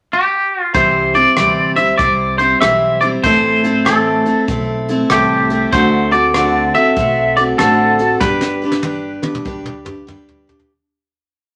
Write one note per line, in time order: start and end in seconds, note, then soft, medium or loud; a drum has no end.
0.13 0.62 G4 medium
0.62 0.74 F4 medium
0.74 1.23 C2 medium
0.74 1.14 C3 medium
0.74 1.15 E3 medium
0.74 1.15 G3 medium
0.74 1.15 C4 medium
0.74 1.14 E4 medium
0.74 1.14 C5 medium
0.74 1.13 C5 medium
0.74 kick loud
0.74 closed hi-hat medium
1.14 1.37 G3 soft
1.14 1.37 C4 soft
1.14 1.37 E4 medium
1.14 1.36 C5 soft
1.14 1.73 D5 medium
1.14 closed hi-hat medium
1.37 1.90 D2 medium
1.37 1.77 C3 medium
1.37 1.77 E3 medium
1.37 1.77 G3 medium
1.37 1.78 C4 medium
1.37 1.76 E4 medium
1.37 1.75 C5 medium
1.37 cross-stick medium
1.37 closed hi-hat medium
1.76 1.97 G3 soft
1.76 1.98 C4 soft
1.76 1.99 E4 soft
1.76 1.99 C5 soft
1.76 1.97 E5 medium
1.76 closed hi-hat medium
1.98 2.52 C2 medium
1.98 2.39 G3 soft
1.98 2.39 C4 medium
1.98 2.39 E4 medium
1.98 2.38 C5 medium
1.98 2.36 D5 medium
1.98 kick loud
1.98 closed hi-hat medium
2.38 2.61 G3 soft
2.38 2.62 C4 soft
2.38 2.62 E4 soft
2.38 2.60 C5 medium
2.38 2.61 C5 soft
2.38 closed hi-hat medium
2.61 3.15 B1 medium
2.61 3.02 E3 medium
2.61 3.02 G3 medium
2.61 3.02 C4 medium
2.61 3.02 E4 medium
2.61 3.00 C5 medium
2.61 3.00 E5 medium
2.61 cross-stick medium
2.61 closed hi-hat medium
3.01 3.25 G3 soft
3.01 3.24 C4 soft
3.01 3.24 E4 soft
3.01 3.24 C5 soft
3.01 3.07 D5 medium
3.01 closed hi-hat medium
3.23 4.20 A1 medium
3.23 3.64 A2 medium
3.23 3.64 E3 medium
3.23 3.64 A3 medium
3.23 3.64 C4 medium
3.23 3.63 E4 medium
3.23 3.62 A4 medium
3.23 3.88 C5 medium
3.23 kick loud
3.23 closed hi-hat medium
3.64 3.85 A3 soft
3.64 3.86 C4 soft
3.64 3.86 E4 medium
3.64 3.86 A4 medium
3.64 closed hi-hat medium
3.85 4.26 A2 medium
3.85 4.26 E3 medium
3.85 4.26 A3 medium
3.85 4.26 C4 medium
3.85 4.26 E4 medium
3.85 4.44 A4 medium
3.85 4.24 A4 medium
3.85 cross-stick loud
3.85 closed hi-hat medium
4.26 4.46 A3 soft
4.26 4.48 C4 soft
4.26 4.49 E4 soft
4.26 4.48 A4 soft
4.26 closed hi-hat medium
4.48 5.01 B1 medium
4.48 4.88 A3 soft
4.48 4.88 C4 medium
4.48 4.89 E4 medium
4.48 4.88 A4 medium
4.48 kick medium
4.48 closed hi-hat medium
4.89 5.10 A3 soft
4.89 5.11 C4 soft
4.89 5.11 E4 medium
4.89 5.11 A4 medium
4.89 closed hi-hat medium
5.10 5.63 C2 medium
5.10 5.50 A2 medium
5.10 5.51 E3 medium
5.10 5.51 A3 medium
5.10 5.51 C4 medium
5.10 5.50 E4 medium
5.10 5.69 G4 medium
5.10 5.50 A4 medium
5.10 cross-stick loud
5.10 closed hi-hat medium
5.50 5.73 A3 soft
5.50 5.73 C4 soft
5.50 5.73 E4 soft
5.50 5.73 A4 soft
5.50 closed hi-hat medium
5.72 6.69 D2 medium
5.72 6.13 D3 medium
5.72 6.13 A3 medium
5.72 6.13 C4 medium
5.72 6.12 F#4 medium
5.72 6.10 A4 medium
5.72 6.12 C5 medium
5.72 kick loud
5.72 closed hi-hat medium
6.11 6.35 C4 soft
6.11 6.35 F#4 soft
6.11 6.34 A4 medium
6.11 6.74 D5 loud
6.11 closed hi-hat medium
6.34 6.75 D3 medium
6.34 6.75 A3 medium
6.34 6.75 C4 medium
6.34 6.75 F#4 medium
6.34 6.74 A4 medium
6.34 cross-stick loud
6.34 closed hi-hat medium
6.74 6.97 C4 soft
6.74 6.98 F#4 soft
6.74 6.97 A4 soft
6.74 7.33 E5 loud
6.74 closed hi-hat medium
6.96 7.50 B1 medium
6.96 7.37 A3 medium
6.96 7.38 C4 medium
6.96 7.38 F#4 medium
6.96 7.37 A4 medium
6.96 kick medium
6.96 closed hi-hat medium
7.37 7.60 C4 soft
7.37 7.60 F#4 soft
7.37 7.60 A4 medium
7.37 7.43 D5 medium
7.37 closed hi-hat medium
7.58 8.12 A1 medium
7.58 8.00 D3 medium
7.58 8.00 A3 medium
7.58 8.00 C4 medium
7.58 8.00 F#4 medium
7.58 8.17 A4 medium
7.58 7.99 A4 medium
7.58 cross-stick loud
7.58 closed hi-hat medium
7.99 8.22 F#4 soft
7.99 8.22 A4 soft
7.99 closed hi-hat medium
8.03 8.21 C4 soft
8.20 9.17 G1 medium
8.20 8.61 G3 medium
8.20 8.62 D4 medium
8.20 8.62 G4 medium
8.20 10.04 B4 medium
8.20 8.60 B4 medium
8.20 kick medium
8.20 snare medium
8.41 snare soft
8.62 8.83 D4 soft
8.62 8.83 G4 medium
8.62 8.84 B4 medium
8.72 snare medium
8.83 9.23 G3 medium
8.83 9.24 D4 medium
8.83 9.23 G4 medium
8.83 9.21 B4 medium
8.83 high tom medium
9.22 9.45 D4 soft
9.22 9.46 G4 soft
9.22 9.45 B4 medium
9.22 high tom medium
9.35 mid tom medium
9.45 10.42 D2 medium
9.45 9.86 G3 medium
9.45 9.86 D4 medium
9.45 9.85 G4 medium
9.45 9.84 B4 medium
9.45 kick medium
9.66 mid tom medium
9.85 10.07 D4 soft
9.85 10.07 G4 medium
9.85 10.07 B4 medium
9.85 mid tom medium
10.07 10.48 G3 medium
10.07 10.48 D4 medium
10.07 10.48 G4 medium
10.07 10.46 B4 medium
10.07 mid tom medium
10.29 floor tom medium
10.47 10.72 D4 soft
10.47 10.71 G4 medium
10.47 10.70 B4 medium
10.47 floor tom medium
10.59 floor tom medium